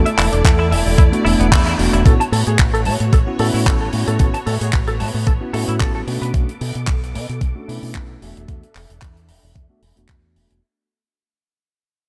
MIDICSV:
0, 0, Header, 1, 7, 480
1, 0, Start_track
1, 0, Key_signature, 3, "major"
1, 0, Tempo, 535714
1, 1840, Time_signature, 4, 2, 24, 8
1, 10829, End_track
2, 0, Start_track
2, 0, Title_t, "Analog synth lead"
2, 0, Program_c, 0, 81
2, 0, Note_on_c, 0, 69, 102
2, 1601, Note_off_c, 0, 69, 0
2, 10829, End_track
3, 0, Start_track
3, 0, Title_t, "Clean electric guitar"
3, 0, Program_c, 1, 27
3, 50, Note_on_c, 1, 76, 101
3, 83, Note_off_c, 1, 76, 0
3, 162, Note_on_c, 1, 64, 102
3, 226, Note_off_c, 1, 64, 0
3, 289, Note_on_c, 1, 62, 76
3, 373, Note_off_c, 1, 62, 0
3, 528, Note_on_c, 1, 64, 104
3, 584, Note_off_c, 1, 64, 0
3, 639, Note_on_c, 1, 76, 78
3, 705, Note_off_c, 1, 76, 0
3, 878, Note_on_c, 1, 64, 83
3, 918, Note_off_c, 1, 64, 0
3, 1117, Note_on_c, 1, 64, 103
3, 1184, Note_off_c, 1, 64, 0
3, 1249, Note_on_c, 1, 59, 81
3, 1305, Note_off_c, 1, 59, 0
3, 1361, Note_on_c, 1, 64, 83
3, 1458, Note_off_c, 1, 64, 0
3, 1488, Note_on_c, 1, 64, 112
3, 1544, Note_off_c, 1, 64, 0
3, 1733, Note_on_c, 1, 64, 77
3, 1814, Note_off_c, 1, 64, 0
3, 1843, Note_on_c, 1, 69, 76
3, 1907, Note_off_c, 1, 69, 0
3, 1974, Note_on_c, 1, 81, 93
3, 2005, Note_off_c, 1, 81, 0
3, 2083, Note_on_c, 1, 69, 92
3, 2146, Note_off_c, 1, 69, 0
3, 2213, Note_on_c, 1, 68, 66
3, 2294, Note_off_c, 1, 68, 0
3, 2452, Note_on_c, 1, 69, 96
3, 2506, Note_off_c, 1, 69, 0
3, 2563, Note_on_c, 1, 81, 70
3, 2627, Note_off_c, 1, 81, 0
3, 2803, Note_on_c, 1, 69, 76
3, 2841, Note_off_c, 1, 69, 0
3, 3043, Note_on_c, 1, 69, 92
3, 3107, Note_off_c, 1, 69, 0
3, 3170, Note_on_c, 1, 64, 74
3, 3226, Note_off_c, 1, 64, 0
3, 3283, Note_on_c, 1, 69, 75
3, 3379, Note_off_c, 1, 69, 0
3, 3412, Note_on_c, 1, 69, 100
3, 3466, Note_off_c, 1, 69, 0
3, 3651, Note_on_c, 1, 69, 71
3, 3733, Note_off_c, 1, 69, 0
3, 3759, Note_on_c, 1, 69, 74
3, 3824, Note_off_c, 1, 69, 0
3, 3888, Note_on_c, 1, 81, 94
3, 3922, Note_off_c, 1, 81, 0
3, 3999, Note_on_c, 1, 69, 92
3, 4065, Note_off_c, 1, 69, 0
3, 4127, Note_on_c, 1, 68, 66
3, 4211, Note_off_c, 1, 68, 0
3, 4369, Note_on_c, 1, 69, 92
3, 4425, Note_off_c, 1, 69, 0
3, 4479, Note_on_c, 1, 81, 69
3, 4545, Note_off_c, 1, 81, 0
3, 4721, Note_on_c, 1, 69, 76
3, 4760, Note_off_c, 1, 69, 0
3, 4959, Note_on_c, 1, 69, 98
3, 5025, Note_off_c, 1, 69, 0
3, 5090, Note_on_c, 1, 64, 71
3, 5145, Note_off_c, 1, 64, 0
3, 5200, Note_on_c, 1, 69, 74
3, 5298, Note_off_c, 1, 69, 0
3, 5330, Note_on_c, 1, 69, 97
3, 5385, Note_off_c, 1, 69, 0
3, 5571, Note_on_c, 1, 71, 68
3, 5653, Note_off_c, 1, 71, 0
3, 10829, End_track
4, 0, Start_track
4, 0, Title_t, "String section"
4, 0, Program_c, 2, 48
4, 0, Note_on_c, 2, 57, 77
4, 0, Note_on_c, 2, 64, 74
4, 0, Note_on_c, 2, 74, 87
4, 1808, Note_off_c, 2, 57, 0
4, 1819, Note_off_c, 2, 64, 0
4, 1820, Note_off_c, 2, 74, 0
4, 1839, Note_on_c, 2, 66, 68
4, 1839, Note_on_c, 2, 73, 82
4, 1842, Note_on_c, 2, 59, 71
4, 5404, Note_off_c, 2, 66, 0
4, 5404, Note_off_c, 2, 73, 0
4, 5444, Note_on_c, 2, 69, 66
4, 5444, Note_on_c, 2, 86, 81
4, 7325, Note_off_c, 2, 59, 0
4, 7343, Note_off_c, 2, 86, 0
4, 7366, Note_on_c, 2, 76, 79
4, 7367, Note_on_c, 2, 62, 67
4, 9486, Note_off_c, 2, 69, 0
4, 9502, Note_off_c, 2, 62, 0
4, 9502, Note_off_c, 2, 76, 0
4, 10829, End_track
5, 0, Start_track
5, 0, Title_t, "Tine electric piano"
5, 0, Program_c, 3, 4
5, 1005, Note_on_c, 3, 57, 93
5, 1009, Note_on_c, 3, 59, 84
5, 1011, Note_on_c, 3, 62, 81
5, 1015, Note_on_c, 3, 66, 103
5, 1092, Note_off_c, 3, 57, 0
5, 1093, Note_off_c, 3, 59, 0
5, 1094, Note_off_c, 3, 62, 0
5, 1097, Note_off_c, 3, 66, 0
5, 1115, Note_on_c, 3, 57, 82
5, 1120, Note_on_c, 3, 59, 73
5, 1121, Note_on_c, 3, 62, 78
5, 1125, Note_on_c, 3, 64, 94
5, 1571, Note_off_c, 3, 57, 0
5, 1574, Note_off_c, 3, 59, 0
5, 1574, Note_off_c, 3, 62, 0
5, 1576, Note_off_c, 3, 64, 0
5, 1596, Note_on_c, 3, 57, 75
5, 1600, Note_on_c, 3, 59, 69
5, 1603, Note_on_c, 3, 62, 68
5, 1605, Note_on_c, 3, 66, 85
5, 1812, Note_off_c, 3, 57, 0
5, 1814, Note_off_c, 3, 59, 0
5, 1815, Note_off_c, 3, 62, 0
5, 1816, Note_off_c, 3, 66, 0
5, 1838, Note_on_c, 3, 59, 76
5, 1842, Note_on_c, 3, 61, 68
5, 1844, Note_on_c, 3, 64, 67
5, 1848, Note_on_c, 3, 66, 80
5, 1968, Note_off_c, 3, 59, 0
5, 1971, Note_off_c, 3, 61, 0
5, 1971, Note_off_c, 3, 64, 0
5, 1973, Note_off_c, 3, 66, 0
5, 2928, Note_on_c, 3, 59, 89
5, 2930, Note_on_c, 3, 61, 80
5, 2933, Note_on_c, 3, 64, 81
5, 2937, Note_on_c, 3, 66, 95
5, 3013, Note_off_c, 3, 59, 0
5, 3014, Note_off_c, 3, 61, 0
5, 3015, Note_off_c, 3, 64, 0
5, 3018, Note_off_c, 3, 66, 0
5, 3038, Note_on_c, 3, 59, 77
5, 3040, Note_on_c, 3, 61, 71
5, 3043, Note_on_c, 3, 64, 71
5, 3046, Note_on_c, 3, 66, 87
5, 3493, Note_off_c, 3, 59, 0
5, 3494, Note_off_c, 3, 61, 0
5, 3495, Note_off_c, 3, 64, 0
5, 3497, Note_off_c, 3, 66, 0
5, 3517, Note_on_c, 3, 59, 67
5, 3520, Note_on_c, 3, 61, 58
5, 3523, Note_on_c, 3, 64, 60
5, 3526, Note_on_c, 3, 66, 76
5, 3732, Note_off_c, 3, 59, 0
5, 3734, Note_off_c, 3, 61, 0
5, 3735, Note_off_c, 3, 64, 0
5, 3737, Note_off_c, 3, 66, 0
5, 3755, Note_on_c, 3, 59, 70
5, 3758, Note_on_c, 3, 61, 67
5, 3761, Note_on_c, 3, 64, 69
5, 3765, Note_on_c, 3, 66, 82
5, 3887, Note_off_c, 3, 59, 0
5, 3888, Note_off_c, 3, 61, 0
5, 3890, Note_off_c, 3, 64, 0
5, 3892, Note_off_c, 3, 66, 0
5, 4844, Note_on_c, 3, 59, 86
5, 4847, Note_on_c, 3, 61, 72
5, 4849, Note_on_c, 3, 64, 77
5, 4854, Note_on_c, 3, 66, 89
5, 4931, Note_off_c, 3, 59, 0
5, 4932, Note_off_c, 3, 61, 0
5, 4934, Note_off_c, 3, 64, 0
5, 4936, Note_off_c, 3, 66, 0
5, 4956, Note_on_c, 3, 59, 76
5, 4958, Note_on_c, 3, 61, 70
5, 4960, Note_on_c, 3, 64, 70
5, 4964, Note_on_c, 3, 66, 90
5, 5412, Note_off_c, 3, 59, 0
5, 5413, Note_off_c, 3, 61, 0
5, 5414, Note_off_c, 3, 64, 0
5, 5416, Note_off_c, 3, 66, 0
5, 5434, Note_on_c, 3, 57, 67
5, 5439, Note_on_c, 3, 61, 64
5, 5440, Note_on_c, 3, 62, 61
5, 5444, Note_on_c, 3, 66, 72
5, 5651, Note_off_c, 3, 57, 0
5, 5653, Note_off_c, 3, 61, 0
5, 5654, Note_off_c, 3, 62, 0
5, 5656, Note_off_c, 3, 66, 0
5, 5677, Note_on_c, 3, 57, 71
5, 5679, Note_on_c, 3, 61, 66
5, 5682, Note_on_c, 3, 62, 69
5, 5686, Note_on_c, 3, 66, 81
5, 5808, Note_off_c, 3, 57, 0
5, 5809, Note_off_c, 3, 61, 0
5, 5811, Note_off_c, 3, 62, 0
5, 5813, Note_off_c, 3, 66, 0
5, 6765, Note_on_c, 3, 57, 81
5, 6768, Note_on_c, 3, 61, 74
5, 6771, Note_on_c, 3, 62, 77
5, 6772, Note_on_c, 3, 66, 88
5, 6851, Note_off_c, 3, 57, 0
5, 6853, Note_off_c, 3, 61, 0
5, 6854, Note_off_c, 3, 62, 0
5, 6855, Note_off_c, 3, 66, 0
5, 6877, Note_on_c, 3, 57, 77
5, 6879, Note_on_c, 3, 61, 69
5, 6882, Note_on_c, 3, 62, 69
5, 6886, Note_on_c, 3, 64, 86
5, 7333, Note_off_c, 3, 57, 0
5, 7333, Note_off_c, 3, 61, 0
5, 7335, Note_off_c, 3, 62, 0
5, 7337, Note_off_c, 3, 64, 0
5, 7358, Note_on_c, 3, 57, 62
5, 7360, Note_on_c, 3, 59, 57
5, 7364, Note_on_c, 3, 62, 60
5, 7367, Note_on_c, 3, 66, 69
5, 7573, Note_off_c, 3, 57, 0
5, 7574, Note_off_c, 3, 59, 0
5, 7576, Note_off_c, 3, 62, 0
5, 7577, Note_off_c, 3, 66, 0
5, 7597, Note_on_c, 3, 57, 70
5, 7600, Note_on_c, 3, 59, 65
5, 7604, Note_on_c, 3, 62, 62
5, 7605, Note_on_c, 3, 66, 73
5, 7728, Note_off_c, 3, 57, 0
5, 7730, Note_off_c, 3, 59, 0
5, 7732, Note_off_c, 3, 62, 0
5, 7732, Note_off_c, 3, 66, 0
5, 8684, Note_on_c, 3, 57, 78
5, 8687, Note_on_c, 3, 59, 71
5, 8691, Note_on_c, 3, 62, 72
5, 8695, Note_on_c, 3, 66, 90
5, 8771, Note_off_c, 3, 57, 0
5, 8773, Note_off_c, 3, 59, 0
5, 8774, Note_off_c, 3, 62, 0
5, 8776, Note_off_c, 3, 66, 0
5, 8921, Note_on_c, 3, 57, 75
5, 8927, Note_on_c, 3, 59, 68
5, 8934, Note_on_c, 3, 62, 69
5, 8940, Note_on_c, 3, 66, 83
5, 9490, Note_off_c, 3, 57, 0
5, 9492, Note_off_c, 3, 59, 0
5, 9496, Note_off_c, 3, 62, 0
5, 9499, Note_off_c, 3, 66, 0
5, 10829, End_track
6, 0, Start_track
6, 0, Title_t, "Fingered electric bass"
6, 0, Program_c, 4, 33
6, 160, Note_on_c, 4, 28, 107
6, 260, Note_off_c, 4, 28, 0
6, 290, Note_on_c, 4, 28, 76
6, 375, Note_off_c, 4, 28, 0
6, 401, Note_on_c, 4, 40, 104
6, 638, Note_on_c, 4, 28, 81
6, 652, Note_off_c, 4, 40, 0
6, 740, Note_off_c, 4, 28, 0
6, 769, Note_on_c, 4, 28, 97
6, 855, Note_off_c, 4, 28, 0
6, 881, Note_on_c, 4, 40, 82
6, 981, Note_off_c, 4, 40, 0
6, 1119, Note_on_c, 4, 28, 85
6, 1220, Note_off_c, 4, 28, 0
6, 1247, Note_on_c, 4, 28, 90
6, 1362, Note_on_c, 4, 40, 92
6, 1375, Note_off_c, 4, 28, 0
6, 1551, Note_off_c, 4, 40, 0
6, 1599, Note_on_c, 4, 28, 96
6, 1700, Note_off_c, 4, 28, 0
6, 1727, Note_on_c, 4, 28, 89
6, 1813, Note_off_c, 4, 28, 0
6, 1843, Note_on_c, 4, 33, 97
6, 1942, Note_off_c, 4, 33, 0
6, 2080, Note_on_c, 4, 45, 95
6, 2180, Note_off_c, 4, 45, 0
6, 2213, Note_on_c, 4, 45, 76
6, 2297, Note_off_c, 4, 45, 0
6, 2322, Note_on_c, 4, 33, 99
6, 2561, Note_on_c, 4, 45, 77
6, 2574, Note_off_c, 4, 33, 0
6, 2661, Note_off_c, 4, 45, 0
6, 2690, Note_on_c, 4, 45, 84
6, 2775, Note_off_c, 4, 45, 0
6, 2802, Note_on_c, 4, 33, 76
6, 2901, Note_off_c, 4, 33, 0
6, 3040, Note_on_c, 4, 45, 75
6, 3141, Note_off_c, 4, 45, 0
6, 3170, Note_on_c, 4, 45, 82
6, 3282, Note_on_c, 4, 33, 80
6, 3295, Note_off_c, 4, 45, 0
6, 3471, Note_off_c, 4, 33, 0
6, 3521, Note_on_c, 4, 45, 84
6, 3621, Note_off_c, 4, 45, 0
6, 3652, Note_on_c, 4, 45, 80
6, 3736, Note_off_c, 4, 45, 0
6, 3761, Note_on_c, 4, 33, 102
6, 3861, Note_off_c, 4, 33, 0
6, 4001, Note_on_c, 4, 45, 102
6, 4101, Note_off_c, 4, 45, 0
6, 4131, Note_on_c, 4, 45, 77
6, 4216, Note_off_c, 4, 45, 0
6, 4241, Note_on_c, 4, 33, 96
6, 4482, Note_on_c, 4, 45, 77
6, 4495, Note_off_c, 4, 33, 0
6, 4581, Note_off_c, 4, 45, 0
6, 4608, Note_on_c, 4, 45, 89
6, 4694, Note_off_c, 4, 45, 0
6, 4720, Note_on_c, 4, 33, 73
6, 4820, Note_off_c, 4, 33, 0
6, 4958, Note_on_c, 4, 45, 74
6, 5059, Note_off_c, 4, 45, 0
6, 5090, Note_on_c, 4, 45, 77
6, 5200, Note_on_c, 4, 33, 80
6, 5214, Note_off_c, 4, 45, 0
6, 5390, Note_off_c, 4, 33, 0
6, 5439, Note_on_c, 4, 47, 84
6, 5540, Note_off_c, 4, 47, 0
6, 5570, Note_on_c, 4, 47, 76
6, 5655, Note_off_c, 4, 47, 0
6, 5682, Note_on_c, 4, 35, 96
6, 5781, Note_off_c, 4, 35, 0
6, 5923, Note_on_c, 4, 47, 100
6, 6022, Note_off_c, 4, 47, 0
6, 6051, Note_on_c, 4, 47, 76
6, 6136, Note_off_c, 4, 47, 0
6, 6160, Note_on_c, 4, 35, 89
6, 6403, Note_on_c, 4, 47, 78
6, 6416, Note_off_c, 4, 35, 0
6, 6502, Note_off_c, 4, 47, 0
6, 6535, Note_on_c, 4, 47, 88
6, 6618, Note_off_c, 4, 47, 0
6, 6642, Note_on_c, 4, 35, 76
6, 6741, Note_off_c, 4, 35, 0
6, 6885, Note_on_c, 4, 47, 75
6, 6983, Note_off_c, 4, 47, 0
6, 7012, Note_on_c, 4, 47, 74
6, 7121, Note_on_c, 4, 35, 73
6, 7134, Note_off_c, 4, 47, 0
6, 7310, Note_off_c, 4, 35, 0
6, 7363, Note_on_c, 4, 28, 81
6, 7462, Note_off_c, 4, 28, 0
6, 7494, Note_on_c, 4, 28, 72
6, 7577, Note_off_c, 4, 28, 0
6, 7602, Note_on_c, 4, 40, 94
6, 7701, Note_off_c, 4, 40, 0
6, 7843, Note_on_c, 4, 28, 92
6, 7942, Note_off_c, 4, 28, 0
6, 7970, Note_on_c, 4, 28, 72
6, 8055, Note_off_c, 4, 28, 0
6, 8081, Note_on_c, 4, 40, 90
6, 8321, Note_on_c, 4, 28, 68
6, 8334, Note_off_c, 4, 40, 0
6, 8421, Note_off_c, 4, 28, 0
6, 8448, Note_on_c, 4, 28, 83
6, 8534, Note_off_c, 4, 28, 0
6, 8563, Note_on_c, 4, 40, 70
6, 8662, Note_off_c, 4, 40, 0
6, 8800, Note_on_c, 4, 28, 81
6, 8901, Note_off_c, 4, 28, 0
6, 8931, Note_on_c, 4, 28, 70
6, 9016, Note_off_c, 4, 28, 0
6, 9042, Note_on_c, 4, 40, 74
6, 9279, Note_on_c, 4, 28, 86
6, 9293, Note_off_c, 4, 40, 0
6, 9380, Note_off_c, 4, 28, 0
6, 9411, Note_on_c, 4, 28, 81
6, 9496, Note_off_c, 4, 28, 0
6, 10829, End_track
7, 0, Start_track
7, 0, Title_t, "Drums"
7, 53, Note_on_c, 9, 42, 58
7, 143, Note_off_c, 9, 42, 0
7, 162, Note_on_c, 9, 46, 115
7, 165, Note_on_c, 9, 39, 59
7, 252, Note_off_c, 9, 46, 0
7, 255, Note_off_c, 9, 39, 0
7, 291, Note_on_c, 9, 42, 73
7, 380, Note_off_c, 9, 42, 0
7, 400, Note_on_c, 9, 36, 116
7, 402, Note_on_c, 9, 42, 98
7, 412, Note_on_c, 9, 39, 105
7, 490, Note_off_c, 9, 36, 0
7, 491, Note_off_c, 9, 42, 0
7, 501, Note_off_c, 9, 39, 0
7, 647, Note_on_c, 9, 46, 108
7, 736, Note_off_c, 9, 46, 0
7, 772, Note_on_c, 9, 46, 66
7, 862, Note_off_c, 9, 46, 0
7, 879, Note_on_c, 9, 42, 94
7, 880, Note_on_c, 9, 36, 112
7, 969, Note_off_c, 9, 42, 0
7, 970, Note_off_c, 9, 36, 0
7, 1012, Note_on_c, 9, 42, 57
7, 1102, Note_off_c, 9, 42, 0
7, 1130, Note_on_c, 9, 46, 100
7, 1220, Note_off_c, 9, 46, 0
7, 1258, Note_on_c, 9, 42, 65
7, 1348, Note_off_c, 9, 42, 0
7, 1361, Note_on_c, 9, 36, 119
7, 1362, Note_on_c, 9, 42, 99
7, 1368, Note_on_c, 9, 39, 127
7, 1450, Note_off_c, 9, 36, 0
7, 1451, Note_off_c, 9, 42, 0
7, 1458, Note_off_c, 9, 39, 0
7, 1494, Note_on_c, 9, 42, 49
7, 1583, Note_off_c, 9, 42, 0
7, 1603, Note_on_c, 9, 46, 99
7, 1693, Note_off_c, 9, 46, 0
7, 1735, Note_on_c, 9, 42, 66
7, 1825, Note_off_c, 9, 42, 0
7, 1842, Note_on_c, 9, 36, 114
7, 1847, Note_on_c, 9, 42, 83
7, 1932, Note_off_c, 9, 36, 0
7, 1936, Note_off_c, 9, 42, 0
7, 1977, Note_on_c, 9, 42, 59
7, 2066, Note_off_c, 9, 42, 0
7, 2084, Note_on_c, 9, 46, 100
7, 2174, Note_off_c, 9, 46, 0
7, 2209, Note_on_c, 9, 42, 55
7, 2299, Note_off_c, 9, 42, 0
7, 2319, Note_on_c, 9, 42, 90
7, 2321, Note_on_c, 9, 39, 123
7, 2322, Note_on_c, 9, 36, 109
7, 2408, Note_off_c, 9, 42, 0
7, 2410, Note_off_c, 9, 39, 0
7, 2412, Note_off_c, 9, 36, 0
7, 2459, Note_on_c, 9, 42, 48
7, 2549, Note_off_c, 9, 42, 0
7, 2554, Note_on_c, 9, 46, 92
7, 2644, Note_off_c, 9, 46, 0
7, 2688, Note_on_c, 9, 42, 59
7, 2777, Note_off_c, 9, 42, 0
7, 2802, Note_on_c, 9, 36, 115
7, 2805, Note_on_c, 9, 42, 91
7, 2892, Note_off_c, 9, 36, 0
7, 2894, Note_off_c, 9, 42, 0
7, 3036, Note_on_c, 9, 46, 107
7, 3126, Note_off_c, 9, 46, 0
7, 3170, Note_on_c, 9, 46, 65
7, 3260, Note_off_c, 9, 46, 0
7, 3281, Note_on_c, 9, 36, 113
7, 3283, Note_on_c, 9, 42, 88
7, 3289, Note_on_c, 9, 39, 116
7, 3371, Note_off_c, 9, 36, 0
7, 3372, Note_off_c, 9, 42, 0
7, 3379, Note_off_c, 9, 39, 0
7, 3517, Note_on_c, 9, 46, 98
7, 3607, Note_off_c, 9, 46, 0
7, 3651, Note_on_c, 9, 42, 66
7, 3740, Note_off_c, 9, 42, 0
7, 3754, Note_on_c, 9, 42, 84
7, 3761, Note_on_c, 9, 36, 115
7, 3844, Note_off_c, 9, 42, 0
7, 3851, Note_off_c, 9, 36, 0
7, 3890, Note_on_c, 9, 42, 55
7, 3979, Note_off_c, 9, 42, 0
7, 4001, Note_on_c, 9, 46, 98
7, 4090, Note_off_c, 9, 46, 0
7, 4131, Note_on_c, 9, 42, 61
7, 4221, Note_off_c, 9, 42, 0
7, 4234, Note_on_c, 9, 42, 79
7, 4237, Note_on_c, 9, 39, 102
7, 4241, Note_on_c, 9, 36, 111
7, 4324, Note_off_c, 9, 42, 0
7, 4326, Note_off_c, 9, 39, 0
7, 4331, Note_off_c, 9, 36, 0
7, 4367, Note_on_c, 9, 42, 46
7, 4457, Note_off_c, 9, 42, 0
7, 4479, Note_on_c, 9, 46, 100
7, 4568, Note_off_c, 9, 46, 0
7, 4613, Note_on_c, 9, 46, 62
7, 4703, Note_off_c, 9, 46, 0
7, 4717, Note_on_c, 9, 42, 83
7, 4721, Note_on_c, 9, 36, 113
7, 4807, Note_off_c, 9, 42, 0
7, 4810, Note_off_c, 9, 36, 0
7, 4961, Note_on_c, 9, 46, 108
7, 5051, Note_off_c, 9, 46, 0
7, 5094, Note_on_c, 9, 42, 64
7, 5184, Note_off_c, 9, 42, 0
7, 5200, Note_on_c, 9, 39, 110
7, 5201, Note_on_c, 9, 36, 109
7, 5206, Note_on_c, 9, 42, 72
7, 5289, Note_off_c, 9, 39, 0
7, 5291, Note_off_c, 9, 36, 0
7, 5296, Note_off_c, 9, 42, 0
7, 5442, Note_on_c, 9, 46, 96
7, 5532, Note_off_c, 9, 46, 0
7, 5581, Note_on_c, 9, 42, 67
7, 5671, Note_off_c, 9, 42, 0
7, 5681, Note_on_c, 9, 36, 121
7, 5683, Note_on_c, 9, 42, 76
7, 5771, Note_off_c, 9, 36, 0
7, 5773, Note_off_c, 9, 42, 0
7, 5814, Note_on_c, 9, 42, 48
7, 5903, Note_off_c, 9, 42, 0
7, 5922, Note_on_c, 9, 46, 101
7, 6011, Note_off_c, 9, 46, 0
7, 6048, Note_on_c, 9, 42, 57
7, 6137, Note_off_c, 9, 42, 0
7, 6158, Note_on_c, 9, 39, 102
7, 6158, Note_on_c, 9, 42, 73
7, 6161, Note_on_c, 9, 36, 116
7, 6247, Note_off_c, 9, 39, 0
7, 6247, Note_off_c, 9, 42, 0
7, 6250, Note_off_c, 9, 36, 0
7, 6303, Note_on_c, 9, 42, 50
7, 6393, Note_off_c, 9, 42, 0
7, 6408, Note_on_c, 9, 46, 94
7, 6497, Note_off_c, 9, 46, 0
7, 6534, Note_on_c, 9, 42, 55
7, 6624, Note_off_c, 9, 42, 0
7, 6642, Note_on_c, 9, 36, 120
7, 6644, Note_on_c, 9, 42, 76
7, 6731, Note_off_c, 9, 36, 0
7, 6734, Note_off_c, 9, 42, 0
7, 6890, Note_on_c, 9, 46, 97
7, 6979, Note_off_c, 9, 46, 0
7, 7013, Note_on_c, 9, 46, 68
7, 7103, Note_off_c, 9, 46, 0
7, 7122, Note_on_c, 9, 36, 112
7, 7122, Note_on_c, 9, 39, 115
7, 7122, Note_on_c, 9, 42, 76
7, 7211, Note_off_c, 9, 39, 0
7, 7211, Note_off_c, 9, 42, 0
7, 7212, Note_off_c, 9, 36, 0
7, 7365, Note_on_c, 9, 46, 90
7, 7455, Note_off_c, 9, 46, 0
7, 7499, Note_on_c, 9, 42, 52
7, 7588, Note_off_c, 9, 42, 0
7, 7602, Note_on_c, 9, 36, 117
7, 7604, Note_on_c, 9, 42, 83
7, 7692, Note_off_c, 9, 36, 0
7, 7693, Note_off_c, 9, 42, 0
7, 7734, Note_on_c, 9, 42, 49
7, 7824, Note_off_c, 9, 42, 0
7, 7842, Note_on_c, 9, 39, 56
7, 7846, Note_on_c, 9, 46, 96
7, 7932, Note_off_c, 9, 39, 0
7, 7936, Note_off_c, 9, 46, 0
7, 7974, Note_on_c, 9, 42, 62
7, 8063, Note_off_c, 9, 42, 0
7, 8079, Note_on_c, 9, 39, 94
7, 8082, Note_on_c, 9, 36, 112
7, 8087, Note_on_c, 9, 42, 65
7, 8169, Note_off_c, 9, 39, 0
7, 8172, Note_off_c, 9, 36, 0
7, 8176, Note_off_c, 9, 42, 0
7, 8214, Note_on_c, 9, 42, 46
7, 8304, Note_off_c, 9, 42, 0
7, 8318, Note_on_c, 9, 46, 107
7, 8408, Note_off_c, 9, 46, 0
7, 8449, Note_on_c, 9, 46, 63
7, 8539, Note_off_c, 9, 46, 0
7, 8562, Note_on_c, 9, 36, 111
7, 8563, Note_on_c, 9, 42, 75
7, 8651, Note_off_c, 9, 36, 0
7, 8652, Note_off_c, 9, 42, 0
7, 8803, Note_on_c, 9, 46, 93
7, 8892, Note_off_c, 9, 46, 0
7, 8931, Note_on_c, 9, 42, 56
7, 9021, Note_off_c, 9, 42, 0
7, 9036, Note_on_c, 9, 39, 94
7, 9042, Note_on_c, 9, 36, 107
7, 9044, Note_on_c, 9, 42, 78
7, 9126, Note_off_c, 9, 39, 0
7, 9131, Note_off_c, 9, 36, 0
7, 9134, Note_off_c, 9, 42, 0
7, 9282, Note_on_c, 9, 46, 84
7, 9371, Note_off_c, 9, 46, 0
7, 9411, Note_on_c, 9, 42, 58
7, 9501, Note_off_c, 9, 42, 0
7, 10829, End_track
0, 0, End_of_file